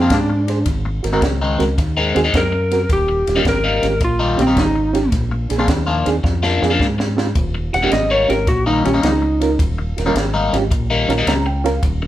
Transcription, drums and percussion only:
0.10 kick, snare, ride
0.48 snare, ride
0.66 kick, snare, ride
1.04 snare, ride
1.22 kick, snare, ride
1.60 snare, ride
1.78 kick, snare, ride
2.16 snare, ride
2.34 kick, snare, ride
2.71 snare, ride
2.89 kick, snare, ride
3.27 snare, ride
3.45 kick, snare, ride
3.83 snare, ride
4.01 kick, ride
4.39 snare, ride
4.57 kick, snare, ride
4.95 snare, ride
5.12 kick, snare, ride
5.50 snare, ride
5.68 kick, snare, ride
6.06 snare, ride
6.24 kick, snare
6.43 snare
6.63 snare
6.80 kick, snare
7.00 snare
7.18 snare
7.35 kick, ride
7.74 snare, ride
7.92 snare, ride
8.30 snare, ride
8.47 kick, snare, ride
8.85 snare, ride
9.03 snare, ride
9.41 snare, ride
9.59 kick, ride
9.98 snare, ride
10.16 snare, ride
10.54 snare, ride
10.71 kick, ride
11.10 snare, ride
11.27 snare, ride
11.66 snare, ride
11.83 kick, ride

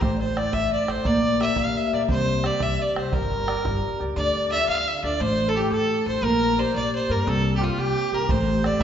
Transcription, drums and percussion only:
0.02 bodhran
0.21 bodhran
0.37 bodhran
0.53 bodhran
0.63 bodhran
0.72 bodhran
0.88 bodhran
1.05 bodhran
1.25 bodhran
1.41 bodhran
1.56 bodhran
1.66 bodhran
1.76 bodhran
2.09 bodhran
2.28 bodhran
2.44 bodhran
2.60 bodhran
2.70 bodhran
2.80 bodhran
2.96 bodhran
3.12 bodhran
3.31 bodhran
3.48 bodhran
3.65 bodhran
3.74 bodhran
3.84 bodhran
8.29 bodhran
8.48 bodhran
8.64 bodhran

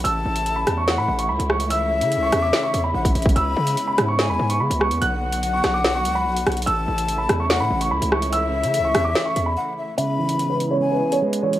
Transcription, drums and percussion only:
0.05 closed hi-hat
0.36 closed hi-hat
0.46 closed hi-hat
0.67 cross-stick, closed hi-hat
0.88 snare
1.19 closed hi-hat
1.40 closed hi-hat
1.50 cross-stick
1.60 closed hi-hat
1.70 closed hi-hat
2.01 closed hi-hat
2.12 closed hi-hat
2.32 cross-stick, closed hi-hat
2.53 snare
2.74 closed hi-hat
3.05 kick, closed hi-hat
3.15 closed hi-hat
3.22 kick, closed hi-hat
3.29 closed hi-hat
3.36 closed hi-hat
3.67 closed hi-hat
3.77 closed hi-hat
3.98 cross-stick, closed hi-hat
4.19 snare
4.50 closed hi-hat
4.71 closed hi-hat
4.81 cross-stick
4.91 closed hi-hat
5.02 closed hi-hat
5.32 closed hi-hat
5.43 closed hi-hat
5.64 cross-stick, snare, closed hi-hat
5.84 snare
6.05 closed hi-hat
6.37 closed hi-hat
6.47 cross-stick, closed hi-hat
6.52 closed hi-hat
6.57 closed hi-hat
6.62 closed hi-hat
6.67 closed hi-hat
6.98 closed hi-hat
7.08 closed hi-hat
7.29 cross-stick, closed hi-hat
7.50 snare
7.81 closed hi-hat
8.02 closed hi-hat
8.12 cross-stick
8.22 closed hi-hat
8.33 closed hi-hat
8.63 closed hi-hat
8.74 closed hi-hat
8.95 cross-stick, closed hi-hat
9.15 snare
9.36 closed hi-hat
9.98 closed hi-hat
10.29 closed hi-hat
10.39 closed hi-hat
10.60 closed hi-hat
11.12 closed hi-hat
11.33 closed hi-hat
11.53 closed hi-hat

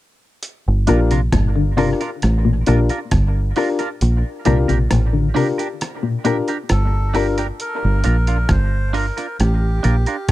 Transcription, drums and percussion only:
0.43 closed hi-hat
0.87 closed hi-hat
1.11 closed hi-hat
1.32 kick, cross-stick, closed hi-hat
1.78 open hi-hat
2.01 closed hi-hat
2.22 cross-stick, closed hi-hat
2.66 closed hi-hat
2.89 closed hi-hat
3.11 kick, cross-stick, closed hi-hat
3.56 open hi-hat
3.79 closed hi-hat
4.01 closed hi-hat
4.45 closed hi-hat
4.69 closed hi-hat
4.91 cross-stick, closed hi-hat
5.36 open hi-hat
5.59 closed hi-hat
5.81 cross-stick, closed hi-hat
6.25 closed hi-hat
6.48 closed hi-hat
6.69 cross-stick, closed hi-hat
7.15 open hi-hat
7.38 closed hi-hat
7.60 closed hi-hat
8.04 closed hi-hat
8.27 closed hi-hat
8.49 kick, cross-stick, closed hi-hat
8.94 open hi-hat
9.18 closed hi-hat
9.40 cross-stick, closed hi-hat
9.84 closed hi-hat
10.06 closed hi-hat
10.29 kick, closed hi-hat

